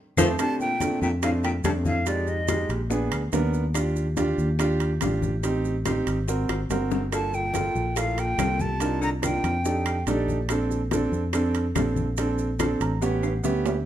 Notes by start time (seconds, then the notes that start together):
0.17 F2 F3 A3 C4, cowbell, high conga, high timbale, claves, maracas
0.38 C3 A3 C4 D4 A5, high bongo, high conga, high timbale, claves, maracas
0.60 A#2 G5, high bongo, high conga, maracas
0.80 A3 C4 D4, high bongo, high conga, high timbale, maracas
1.01 F2 A#2 G5, high bongo, high conga, maracas
1.22 A2 A3 C4 D4 F5, high bongo, high conga, high timbale, claves, maracas
1.44 A#2 G5, high conga, high timbale, maracas
1.64 F2 C3 A3 C4 D4 A5, high bongo, low bongo, high conga, high timbale, low timbale, claves, maracas
1.85 A2 F5, high bongo, high conga, maracas
2.06 F2 G#3 D#4 G4 D5, high bongo, high conga, high timbale, maracas
2.27 G#2 D#5, high bongo, high conga, maracas
2.48 G#3 D#4 G4, high bongo, high conga, high timbale, claves, maracas
2.69 A#1, high bongo, high conga, high timbale, maracas
2.90 B3 D4 G#4, high bongo, high conga, maracas
3.11 D2, high conga, high timbale, claves, maracas
3.33 D#2 B3 D4 A#4, high bongo, low bongo, high conga, high timbale, low timbale, maracas
3.54 high bongo, maracas
3.74 D4 F4 G4, high bongo, high timbale, claves, maracas
3.96 high bongo, high conga, maracas
4.17 D4 F4 G4, high bongo, high conga, high timbale, maracas
4.38 D#2, high bongo, high conga, maracas
4.59 D4 F4 G4, high bongo, high timbale, claves, maracas
4.80 high timbale, maracas
5.01 A1 D4 F4 G4, high bongo, low bongo, high conga, high timbale, claves, maracas
5.22 high bongo, high conga, maracas
5.43 C4 D#4 G4, high bongo, high conga, high timbale, maracas
5.65 high bongo, high conga, maracas
5.85 C4 D#4 G4, high bongo, high conga, high timbale, claves, maracas
6.07 G#1, high bongo, high conga, high timbale, maracas
6.28 C4 F#4 A#4, high bongo, high conga, maracas
6.49 G#1, high bongo, high conga, high timbale, claves, maracas
6.70 G1 C4 F#4 A#4, low bongo, high conga, high timbale, low timbale, maracas
6.91 low bongo, maracas
7.12 D3 A#3 F4 A4 A5, high bongo, high conga, high timbale, claves, maracas
7.33 A#2 G5, high bongo, high conga, maracas
7.54 A#3 F4 A4, high bongo, high conga, high timbale, maracas
7.75 A#1, high bongo, high conga, maracas
7.96 A2 A#3 F4 A4 F5, high bongo, high conga, high timbale, claves, maracas
8.18 A#2 G5, high conga, high timbale, maracas
8.38 C2 A#3 F4 A4, high bongo, low bongo, high conga, high timbale, low timbale, claves, maracas
8.59 C3 A5, high bongo, high conga, maracas
8.80 D4 D#4 F4 A#4, high bongo, high conga, high timbale, maracas
9.01 D3 A#5, high bongo, high conga, maracas
9.22 A#2 D4 D#4 F4 A#4 G5, high bongo, high conga, high timbale, claves, maracas
9.44 F2, high bongo, high conga, high timbale, maracas
9.65 D4 D#4 G4 A4, high bongo, high conga, maracas
9.86 G5, high conga, high timbale, claves, maracas
10.07 A#1 D4 D#4 G4 A4 D5, high bongo, low bongo, high timbale, maracas
10.28 high bongo, high conga, maracas
10.49 C4 D4 A4, high bongo, high conga, high timbale, claves, maracas
10.70 high bongo, high conga, maracas
10.91 C4 D4 A4, high bongo, high conga, high timbale, maracas
11.12 F2, high bongo, high conga, maracas
11.33 C4 D4 A4, high bongo, high conga, high timbale, claves, maracas
11.55 high conga, high timbale, maracas
11.75 A#1 C4 D4 A4, high bongo, low bongo, high conga, high timbale, low timbale, claves, maracas
11.96 high bongo, high conga, maracas
12.17 C4 D4 A4, high bongo, high conga, high timbale, maracas
12.38 high bongo, high conga, maracas
12.59 C4 D4 A4, high bongo, high conga, high timbale, claves, maracas
12.80 A1 A#5, high bongo, high conga, high timbale, maracas
13.01 B3 C#4 G4 F#5, high bongo, high conga, maracas
13.22 high conga, high timbale, claves, maracas
13.44 D2 B3 C#4 G4 E5, high bongo, low bongo, maracas
13.65 high bongo, low timbale, maracas